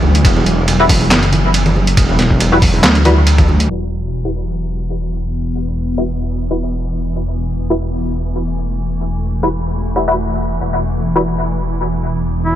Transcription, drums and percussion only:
0.03 high conga medium
0.15 closed hi-hat medium
0.25 kick loud
0.25 closed hi-hat medium
0.25 ride medium
0.37 high conga medium
0.46 closed hi-hat medium
0.68 closed hi-hat medium
0.68 ride soft
0.68 high conga medium
0.89 kick loud
0.89 open hi-hat loud
1.01 high conga medium
1.11 snare loud
1.11 clap medium
1.11 closed hi-hat medium
1.11 ride medium
1.23 closed hi-hat soft
1.33 closed hi-hat medium
1.33 low conga medium
1.44 high conga medium
1.54 closed hi-hat medium
1.54 ride soft
1.66 closed hi-hat soft
1.66 low conga loud
1.76 high conga medium
1.87 closed hi-hat medium
1.97 kick loud
1.97 closed hi-hat medium
1.97 ride medium
2.09 high conga loud
2.19 snare medium
2.19 closed hi-hat medium
2.31 kick medium
2.40 closed hi-hat medium
2.40 ride soft
2.40 high conga medium
2.62 kick loud
2.62 open hi-hat loud
2.74 high conga medium
2.84 snare loud
2.84 clap medium
2.84 closed hi-hat medium
2.84 ride medium
2.95 closed hi-hat soft
3.05 closed hi-hat medium
3.05 low conga medium
3.17 high conga medium
3.27 closed hi-hat medium
3.27 ride soft
3.38 kick loud
3.38 closed hi-hat soft
3.38 low conga medium
3.49 high conga medium
3.60 closed hi-hat medium

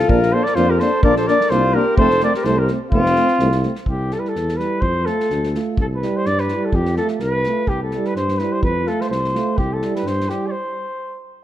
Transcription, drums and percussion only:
0.09 kick medium
0.22 snare soft
0.46 snare soft
0.56 snare soft
0.80 snare soft
1.03 kick loud
1.16 snare soft
1.28 snare soft
1.41 snare soft
1.51 snare soft
1.98 kick medium
2.10 snare soft
2.20 snare soft
2.34 snare soft
2.44 snare soft
2.68 snare soft
2.92 kick medium
3.06 snare soft
3.15 snare soft
3.28 snare soft
3.39 snare soft
3.52 snare soft
3.63 snare soft
3.75 snare soft
3.86 kick medium
4.11 snare soft
4.25 snare soft
4.35 snare soft
4.49 snare soft
4.59 snare soft
4.82 kick medium
5.06 snare soft
5.20 snare soft
5.30 snare soft
5.43 snare soft
5.55 snare soft
5.77 kick medium
6.02 snare soft
6.25 snare soft
6.38 snare soft
6.48 snare soft
6.73 kick medium
6.85 snare soft
6.96 snare soft
7.08 snare soft
7.19 snare soft
7.43 snare soft
7.67 kick medium
7.91 snare soft
8.04 snare soft
8.16 snare soft
8.28 snare soft
8.39 snare soft
8.63 kick medium
8.87 snare soft
9.01 snare soft
9.12 snare soft
9.24 snare soft
9.35 snare soft
9.58 kick medium
9.82 snare soft
9.96 snare soft
10.06 snare soft
10.20 snare soft
10.29 snare soft

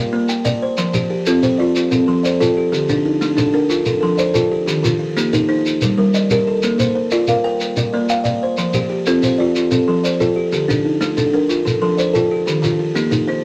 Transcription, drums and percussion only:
0.29 shekere medium
0.45 shekere medium
0.77 shekere medium
0.94 shekere medium
1.26 shekere medium
1.43 shekere medium
1.75 shekere medium
1.92 shekere medium
2.25 shekere medium
2.42 shekere medium
2.74 shekere medium
2.89 shekere medium
3.22 shekere medium
3.38 shekere medium
3.70 shekere medium
3.86 shekere medium
4.18 shekere medium
4.35 shekere medium
4.68 shekere medium
4.85 shekere medium
5.18 shekere medium
5.34 shekere medium
5.66 shekere medium
5.81 shekere medium
6.14 shekere medium
6.30 shekere medium
6.63 shekere medium
6.79 shekere medium
7.11 shekere medium
7.27 shekere medium
7.60 shekere medium
7.77 shekere medium
8.09 shekere medium
8.25 shekere medium
8.57 shekere medium
8.73 shekere medium
9.06 shekere medium
9.23 shekere medium
9.56 shekere medium
9.71 shekere medium
10.05 shekere medium
10.21 shekere medium
10.53 shekere medium
10.70 shekere medium
11.02 shekere medium
11.17 shekere medium
11.50 shekere medium
11.67 shekere medium
11.99 shekere medium
12.15 shekere medium
12.47 shekere medium
12.64 shekere medium
12.96 shekere medium
13.12 shekere medium

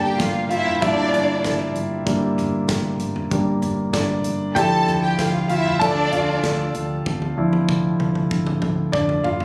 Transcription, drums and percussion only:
0.20 kick loud
0.20 snare loud
0.20 closed hi-hat medium
0.50 closed hi-hat medium
0.67 floor tom medium
0.82 kick loud
0.82 closed hi-hat medium
1.14 closed hi-hat medium
1.44 kick loud
1.44 snare loud
1.44 closed hi-hat medium
1.75 closed hi-hat medium
2.07 kick loud
2.07 closed hi-hat medium
2.38 closed hi-hat medium
2.38 floor tom medium
2.69 kick loud
2.69 snare loud
2.69 closed hi-hat loud
3.00 closed hi-hat medium
3.16 floor tom medium
3.31 kick loud
3.31 closed hi-hat medium
3.62 closed hi-hat medium
3.62 floor tom medium
3.93 kick loud
3.93 snare loud
3.93 closed hi-hat medium
4.24 closed hi-hat medium
4.56 kick loud
4.56 closed hi-hat medium
4.88 closed hi-hat medium
4.88 floor tom medium
5.19 kick loud
5.19 snare loud
5.19 closed hi-hat loud
5.49 closed hi-hat medium
5.66 floor tom medium
5.81 kick loud
5.81 closed hi-hat medium
6.12 closed hi-hat medium
6.12 floor tom medium
6.44 kick loud
6.44 snare loud
6.44 closed hi-hat medium
6.75 closed hi-hat medium
7.06 kick loud
7.06 high tom medium
7.22 high tom soft
7.53 high tom medium
7.68 kick loud
7.68 mid tom medium
8.00 mid tom medium
8.15 mid tom medium
8.31 kick loud
8.47 mid tom medium
8.62 mid tom medium
8.93 kick loud
8.93 floor tom medium
9.09 floor tom medium
9.24 floor tom loud
9.40 floor tom medium

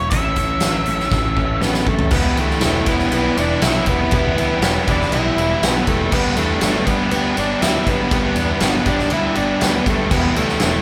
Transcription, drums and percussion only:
0.10 kick loud
0.10 closed hi-hat medium
0.36 kick medium
0.36 closed hi-hat medium
0.60 snare loud
0.60 closed hi-hat medium
0.85 closed hi-hat medium
1.00 snare soft
1.12 kick loud
1.12 snare medium
1.37 kick medium
1.62 snare medium
1.74 snare medium
1.87 kick medium
1.99 floor tom medium
2.11 kick loud
2.11 crash loud
2.37 ride medium
2.50 snare soft
2.61 snare loud
2.61 ride loud
2.86 kick medium
2.86 ride medium
2.99 snare soft
3.12 ride loud
3.37 ride medium
3.62 snare loud
3.62 ride loud
3.86 kick medium
3.86 ride medium
4.11 kick loud
4.11 ride loud
4.38 ride medium
4.62 snare loud
4.62 ride loud
4.88 kick medium
4.88 ride medium
5.01 snare soft
5.12 ride loud
5.38 ride medium
5.63 snare loud
5.63 ride loud
5.87 kick medium
5.87 ride medium
6.12 kick loud
6.12 crash loud
6.37 ride medium
6.61 snare loud
6.61 ride loud
6.87 kick medium
6.87 ride medium
7.11 ride loud
7.37 ride medium
7.62 snare loud
7.62 ride loud
7.87 kick medium
7.87 ride medium
8.11 kick loud
8.11 ride loud
8.36 ride medium
8.60 snare loud
8.60 ride loud
8.86 kick medium
8.86 ride medium
8.99 snare soft
9.10 ride loud
9.35 ride medium
9.61 snare loud
9.61 ride loud
9.86 kick medium
9.86 ride medium
10.11 kick loud
10.11 crash loud
10.36 ride medium
10.49 snare soft
10.60 snare loud
10.60 ride loud

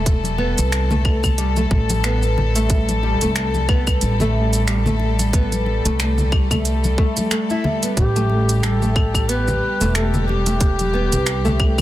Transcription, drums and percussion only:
0.06 kick loud
0.06 closed hi-hat medium
0.06 shaker medium
0.24 closed hi-hat soft
0.24 high conga medium
0.24 shaker soft
0.38 muted conga soft
0.58 closed hi-hat soft
0.58 shaker medium
0.72 finger snap loud
0.72 closed hi-hat medium
0.72 shaker medium
0.91 low conga medium
0.91 shaker soft
1.05 kick medium
1.05 claves medium
1.24 kick medium
1.24 low conga medium
1.24 claves medium
1.24 shaker medium
1.38 closed hi-hat medium
1.38 shaker medium
1.56 muted conga soft
1.56 high conga medium
1.56 shaker soft
1.71 kick loud
1.90 closed hi-hat soft
1.90 muted conga medium
1.90 high conga medium
1.90 shaker medium
2.04 finger snap medium
2.04 closed hi-hat medium
2.04 shaker medium
2.22 muted conga soft
2.22 shaker soft
2.38 muted conga medium
2.38 low conga medium
2.56 closed hi-hat soft
2.56 shaker medium
2.70 kick loud
2.70 closed hi-hat medium
2.70 shaker medium
2.89 closed hi-hat soft
2.89 high conga medium
2.89 shaker soft
3.03 muted conga soft
3.21 closed hi-hat soft
3.21 shaker medium
3.36 finger snap medium
3.36 closed hi-hat medium
3.36 shaker medium
3.54 high conga medium
3.54 shaker soft
3.69 kick loud
3.69 high conga soft
3.69 claves medium
3.87 kick medium
3.87 claves medium
3.87 shaker medium
4.01 closed hi-hat medium
4.01 shaker medium
4.20 high conga medium
4.20 low conga medium
4.20 shaker soft
4.53 closed hi-hat soft
4.53 shaker medium
4.68 finger snap loud
4.68 closed hi-hat medium
4.68 shaker medium
4.86 low conga medium
4.86 shaker soft
5.00 muted conga soft
5.19 closed hi-hat soft
5.19 muted conga medium
5.19 shaker medium
5.33 kick loud
5.33 closed hi-hat medium
5.33 shaker medium
5.52 closed hi-hat soft
5.52 high conga medium
5.52 shaker soft
5.66 muted conga soft
5.85 closed hi-hat soft
5.85 shaker medium
6.00 finger snap medium
6.00 closed hi-hat medium
6.00 shaker medium
6.18 low conga medium
6.18 shaker soft
6.32 kick loud
6.32 claves medium
6.51 kick medium
6.51 closed hi-hat soft
6.51 low conga medium
6.51 claves medium
6.51 shaker medium
6.65 closed hi-hat medium
6.65 shaker medium
6.84 muted conga soft
6.84 high conga medium
6.84 shaker soft
6.98 kick loud
7.17 closed hi-hat soft
7.17 muted conga medium
7.17 high conga medium
7.17 shaker medium
7.31 finger snap medium
7.31 closed hi-hat medium
7.31 shaker medium
7.50 muted conga soft
7.50 shaker soft
7.64 muted conga soft
7.64 low conga medium
7.83 closed hi-hat soft
7.83 shaker medium
7.97 kick loud
7.97 closed hi-hat medium
7.97 shaker medium
8.16 closed hi-hat soft
8.16 high conga medium
8.16 shaker soft
8.30 muted conga soft
8.49 closed hi-hat soft
8.49 shaker medium
8.63 finger snap medium
8.63 closed hi-hat medium
8.63 shaker soft
8.82 high conga medium
8.82 shaker soft
8.96 kick loud
8.96 high conga soft
8.96 claves medium
9.14 kick medium
9.14 claves medium
9.14 shaker medium
9.29 closed hi-hat medium
9.29 shaker medium
9.48 high conga medium
9.48 low conga medium
9.48 shaker soft
9.81 closed hi-hat soft
9.81 shaker medium
9.95 finger snap medium
9.95 closed hi-hat medium
9.95 shaker soft
10.14 low conga medium
10.14 shaker soft
10.29 muted conga medium
10.46 closed hi-hat soft
10.46 muted conga medium
10.46 shaker medium
10.61 kick loud
10.61 closed hi-hat medium
10.61 shaker medium
10.79 closed hi-hat soft
10.79 high conga medium
10.79 shaker soft
10.95 muted conga soft
11.12 closed hi-hat soft
11.12 shaker medium
11.26 finger snap medium
11.26 closed hi-hat medium
11.26 shaker medium
11.45 low conga medium
11.45 shaker soft
11.60 kick medium
11.60 claves medium
11.78 kick soft

